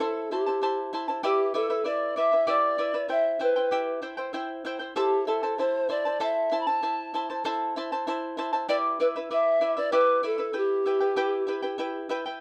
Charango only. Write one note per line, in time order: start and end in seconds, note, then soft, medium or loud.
0.00 0.30 E4 medium
0.00 0.31 A4 medium
0.00 0.31 C5 medium
0.00 0.30 E5 medium
0.00 0.32 A5 medium
0.31 0.47 E4 medium
0.31 0.46 C5 medium
0.31 0.47 E5 medium
0.31 0.45 A5 medium
0.46 0.61 E4 soft
0.46 0.62 C5 soft
0.46 0.62 A5 medium
0.62 0.92 E4 medium
0.62 0.93 C5 medium
0.62 0.92 E5 medium
0.62 0.93 A5 medium
0.93 1.08 E4 medium
0.93 1.08 C5 medium
0.93 1.09 E5 medium
0.93 1.07 A5 medium
1.08 1.23 E4 soft
1.08 1.23 C5 soft
1.08 1.24 A5 soft
1.23 1.53 E4 medium
1.23 1.55 G4 medium
1.23 1.53 B4 medium
1.23 1.53 D5 medium
1.23 1.54 E5 medium
1.54 1.70 E4 medium
1.54 1.69 B4 medium
1.54 1.70 D5 medium
1.54 1.69 E5 medium
1.70 1.84 E4 soft
1.70 1.84 B4 medium
1.70 1.85 E5 medium
1.84 2.16 E4 medium
1.84 2.16 B4 medium
1.84 2.15 D5 medium
1.84 2.17 E5 medium
2.16 2.32 E4 medium
2.16 2.32 B4 medium
2.16 2.32 D5 medium
2.16 2.31 E5 medium
2.32 2.46 E4 soft
2.32 2.46 B4 soft
2.32 2.47 E5 soft
2.47 2.77 E4 medium
2.47 2.78 G4 medium
2.47 2.78 B4 medium
2.47 2.77 D5 medium
2.47 2.78 E5 loud
2.78 2.94 E4 medium
2.78 2.93 B4 medium
2.78 2.94 D5 medium
2.78 2.93 E5 medium
2.94 3.08 E4 soft
2.94 3.09 B4 medium
2.94 3.07 E5 medium
3.09 3.39 E4 medium
3.09 3.39 C5 medium
3.09 3.38 E5 medium
3.09 3.40 G5 medium
3.39 3.56 E4 medium
3.39 3.55 C5 medium
3.39 3.56 E5 medium
3.39 3.55 G5 medium
3.56 3.71 E4 soft
3.56 3.72 C5 soft
3.56 3.71 G5 medium
3.71 4.01 E4 medium
3.71 4.02 G4 medium
3.71 4.00 E5 medium
3.71 4.01 G5 medium
4.02 4.17 E4 medium
4.02 4.17 C5 medium
4.02 4.18 E5 medium
4.02 4.16 G5 medium
4.17 4.32 E4 soft
4.17 4.33 C5 medium
4.17 4.33 G5 medium
4.33 4.64 E4 medium
4.33 4.65 C5 medium
4.33 4.63 E5 medium
4.33 4.65 G5 medium
4.65 4.80 E4 medium
4.65 4.79 C5 medium
4.65 4.80 E5 medium
4.65 4.78 G5 medium
4.79 4.95 E4 soft
4.79 4.95 C5 soft
4.79 4.95 G5 soft
4.96 5.26 E4 medium
4.96 5.27 A4 medium
4.96 5.27 C5 medium
4.96 5.26 E5 medium
4.96 5.27 A5 medium
5.27 5.43 E4 medium
5.27 5.42 C5 medium
5.27 5.42 E5 medium
5.27 5.42 A5 medium
5.43 5.58 E4 soft
5.43 5.58 C5 medium
5.43 5.58 A5 medium
5.58 5.88 E4 medium
5.58 5.88 C5 medium
5.58 5.88 E5 medium
5.58 5.89 A5 medium
5.89 6.05 E4 medium
5.89 6.05 C5 medium
5.89 6.04 E5 medium
5.89 6.04 A5 medium
6.05 6.19 E4 soft
6.05 6.20 C5 soft
6.05 6.20 A5 medium
6.20 6.51 E4 medium
6.20 6.51 A4 medium
6.20 6.51 C5 medium
6.20 6.50 E5 medium
6.20 6.51 A5 medium
6.51 6.67 E4 medium
6.51 6.66 C5 medium
6.51 6.67 E5 medium
6.51 6.66 A5 medium
6.67 6.81 E4 soft
6.67 6.82 C5 soft
6.67 6.82 A5 medium
6.83 7.13 E4 medium
6.83 7.14 C5 medium
6.83 7.13 E5 medium
6.83 7.14 A5 medium
7.14 7.29 E4 medium
7.14 7.29 C5 medium
7.14 7.29 E5 medium
7.14 7.29 A5 medium
7.30 7.44 E4 soft
7.30 7.44 C5 medium
7.30 7.44 A5 medium
7.44 7.76 E4 medium
7.44 7.75 A4 medium
7.44 7.76 C5 loud
7.44 7.75 E5 medium
7.44 7.76 A5 loud
7.76 7.92 E4 medium
7.76 7.91 C5 medium
7.76 7.91 E5 medium
7.76 7.91 A5 medium
7.92 8.06 E4 soft
7.92 8.07 C5 medium
7.92 8.07 A5 medium
8.07 8.37 E4 medium
8.07 8.37 C5 medium
8.07 8.36 E5 medium
8.07 8.37 A5 medium
8.37 8.53 E4 medium
8.37 8.52 C5 medium
8.37 8.53 E5 medium
8.37 8.51 A5 medium
8.53 8.68 E4 soft
8.53 8.68 C5 medium
8.53 8.68 A5 medium
8.68 8.99 E4 medium
8.68 8.99 G4 medium
8.68 9.00 B4 medium
8.68 8.98 D5 medium
8.68 9.00 E5 medium
9.00 9.15 E4 medium
9.00 9.16 B4 medium
9.00 9.15 D5 medium
9.00 9.15 E5 medium
9.16 9.29 E4 soft
9.16 9.30 B4 medium
9.16 9.30 E5 medium
9.31 9.60 E4 medium
9.31 9.60 B4 medium
9.31 9.60 D5 medium
9.31 9.60 E5 medium
9.61 9.77 E4 medium
9.61 9.76 B4 medium
9.61 9.77 D5 medium
9.61 9.75 E5 medium
9.77 9.91 E4 soft
9.77 9.91 B4 soft
9.77 9.92 E5 soft
9.92 10.22 E4 medium
9.92 10.23 G4 medium
9.92 10.22 B4 medium
9.92 10.22 D5 medium
9.92 10.23 E5 medium
10.23 10.38 E4 medium
10.23 10.38 B4 medium
10.23 10.39 D5 medium
10.23 10.37 E5 medium
10.38 10.52 E4 soft
10.38 10.53 B4 soft
10.38 10.52 E5 medium
10.53 10.85 E4 medium
10.53 10.85 B4 medium
10.53 10.84 E5 medium
10.53 10.85 G5 medium
10.86 11.00 E4 medium
10.86 11.00 B4 medium
10.86 11.01 E5 medium
10.86 10.99 G5 medium
11.00 11.16 E4 soft
11.00 11.16 B4 medium
11.00 11.16 G5 medium
11.16 11.47 E4 medium
11.16 11.48 G4 medium
11.16 11.47 B4 medium
11.16 11.46 E5 medium
11.16 11.47 G5 medium
11.47 11.63 E4 medium
11.47 11.62 B4 medium
11.47 11.63 E5 medium
11.47 11.61 G5 medium
11.62 11.78 E4 soft
11.62 11.78 B4 soft
11.62 11.79 G5 medium
11.78 12.09 E4 medium
11.78 12.09 B4 medium
11.78 12.08 E5 medium
11.78 12.10 G5 medium
12.09 12.26 E4 medium
12.09 12.25 B4 medium
12.09 12.25 E5 medium
12.09 12.24 G5 medium
12.26 12.41 E4 soft
12.26 12.41 B4 medium
12.26 12.41 G5 medium